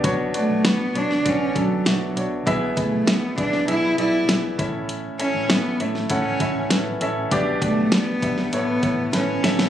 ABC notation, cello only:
X:1
M:4/4
L:1/8
Q:1/4=99
K:Amix
V:1 name="Cello"
z A, B, D C F,2 z | z A, B, D E E2 z | z C B, A, C2 z2 | z A, B,2 B,2 C2 |]